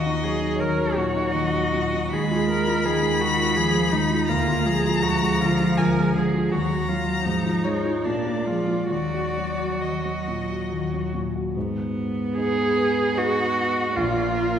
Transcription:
Already playing: grand piano D#2, viola F#4, violin D#5
0.06 grand piano D#4
0.24 grand piano F#3, viola G#4
0.42 grand piano D#4
0.58 grand piano D#2, cello F#3, viola A#4, violin C#5
0.77 grand piano F#3
0.97 grand piano A#2, viola F#4
1.15 grand piano D#4
1.31 grand piano D#2, cello F#3, violin D#5
1.54 grand piano F#3
1.74 grand piano A#2
1.94 grand piano D#4
2.11 grand piano D#2, cello G#3, viola G#4, violin B5
2.31 grand piano F4
2.49 grand piano G#3, viola A#4
2.67 grand piano F4
2.85 grand piano D#2, cello D#3, viola G#4
3.02 grand piano G#3
3.20 grand piano D#3, viola F#4
3.39 grand piano F4
3.56 grand piano D#2, cello F3, viola G#4
3.75 grand piano G#3
3.91 grand piano D#3, cello G#3, viola D#4
4.10 grand piano F4
4.27 grand piano D2, cello A#3, viola F4, violin A#5
4.48 grand piano F4
4.66 cello F3, grand piano G#3, viola G#4
4.85 grand piano F4
5.03 grand piano D2, viola F#4
5.22 grand piano G#3
5.40 grand piano D3, viola F4
5.60 grand piano F4
5.77 grand piano D2, viola A#4, violin G#5
5.97 grand piano G#3
6.15 grand piano D3, viola G#4
6.34 grand piano F4
6.51 grand piano D#2, cello F#3, viola F#4, violin A#5
6.70 grand piano F#4
6.88 cello F#3, grand piano F#3, viola F4
7.07 grand piano F#4
7.25 grand piano G#2, cello F3, viola D#4
7.45 grand piano F4
7.64 cello G#3, grand piano G#3, violin C#5
7.85 grand piano F4
8.04 grand piano A#2, cello A#3, viola D4, violin D5
8.27 grand piano F4
8.46 cello F3, grand piano G#3, viola F4
8.68 grand piano F4
8.91 grand piano D#2, cello F#3, viola F#4, violin D5
9.14 grand piano F#4
9.38 grand piano F#3
9.60 grand piano F#4
9.81 grand piano D#2, violin D#5
10.05 grand piano F#3
10.28 grand piano A#2
10.50 grand piano F#4
10.73 grand piano D#2
10.94 grand piano F#3
11.14 grand piano A#2
11.36 grand piano F#4
11.56 grand piano G#2, cello B3
12.36 grand piano D#4 G#4 B4, viola G#4, violin B4
13.15 grand piano D#4 G#4 B4, viola F#4, violin D#5
13.94 grand piano A#1, cello A#3, viola F4, violin D5
14.35 violin A#4

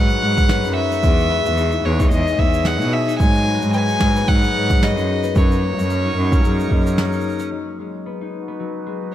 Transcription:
Already playing: cello G#2, harp F#3 G#3 B3 C#4 D#4 F#4, accordion G#3 D#4 F#4 B4, vibraphone G#4 C#5, violin F#5
0.10 shaker
0.22 cello G#2, harp G#3
0.37 kick, shaker
0.49 harp B3, vibraphone C#5, snare, shaker
0.64 cello F#2, harp D#4, shaker
0.76 violin E5
0.91 harp B3, shaker
1.03 cello E2, accordion E3, harp G#3, vibraphone G#4, kick, shaker
1.19 shaker
1.31 harp B3
1.45 cello E2, shaker
1.57 harp D#4, shaker
1.72 harp E4, shaker
1.84 cello E2, accordion G#4, vibraphone C#5, violin C#5
2.00 harp D#4, accordion D#5, kick, shaker
2.11 cello E2, harp G#3, violin D#5, shaker
2.27 shaker
2.38 cello E2, harp B3, vibraphone G#4, violin E5, kick
2.54 shaker
2.65 harp D#4, violin F#5, snare, shaker
2.80 cello B2, harp E4, shaker
2.92 violin E5
3.08 harp D#4, shaker
3.19 cello G#2, harp F#3, accordion G#3, vibraphone C#5, violin G#5, kick, shaker
3.34 accordion F#4, shaker
3.45 harp G#3, accordion B4
3.53 accordion D#4
3.62 cello G#2, shaker
3.73 harp B3, vibraphone G#4, violin G#5, shaker
3.88 harp D#4, shaker
4.00 cello G#2, kick, snare
4.16 harp B3, shaker
4.28 cello G#2, harp F#3, violin F#5, kick, shaker
4.43 shaker
4.54 cello G#2, harp G#3, vibraphone C#5
4.70 kick, shaker
4.82 harp B3, violin D#5, snare, shaker
4.96 cello F#2, harp D#4, shaker
5.09 vibraphone G#4
5.23 harp B3, shaker
5.35 cello F#2, harp F#3, accordion F#3, violin C#5, kick, shaker
5.51 shaker
5.63 harp A#3
5.78 cello F#2, accordion A#4, shaker
5.90 harp C#4, vibraphone C#5, shaker
6.05 harp D#4
6.16 cello F#2
6.32 harp C#4, accordion C#5, kick, shaker
6.44 cello F#2, harp F#3, vibraphone G#4, shaker
6.60 shaker
6.71 cello F#2, harp A#3, vibraphone D#5, kick
6.87 shaker
6.98 harp C#4, vibraphone D#4, snare, shaker
7.12 harp D#4, shaker
7.20 shaker
7.25 vibraphone C#5
7.29 shaker
7.39 harp C#4, shaker
7.52 harp F#3, accordion G#3
7.79 harp G#3
8.05 harp B3, shaker
8.21 harp D#4, accordion B4, shaker
8.24 shaker
8.27 shaker
8.40 accordion F#4
8.48 harp B3, shaker
8.60 harp F#3, shaker
8.75 shaker
8.86 harp G#3
9.01 shaker

